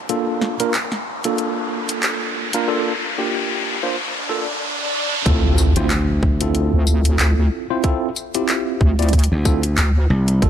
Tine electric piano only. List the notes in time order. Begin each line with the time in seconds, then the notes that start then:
0.10 A#3 D4 F4 A4
0.60 A#3 D4 F4 A#4
1.25 A#3 D4 F4 A4
2.54 A#3 D4 F4 A#4
2.68 A#3 D4 F4 A4
3.18 A#3 D4 F4 G4
3.83 A#3 D4 F4 C5
4.29 A#3 D4 F4 A4
5.26 C4 E4 F4 A4
5.77 C4 E4 F4 C5
6.41 C4 E4 F4 A4
7.70 C4 E4 F4 C5
7.85 C4 E4 F4 A4
8.35 C4 E4 F4 G4
8.99 C4 E4 F4 D5
9.46 C4 E4 F4 A4
10.43 A#3 D4 F4 A4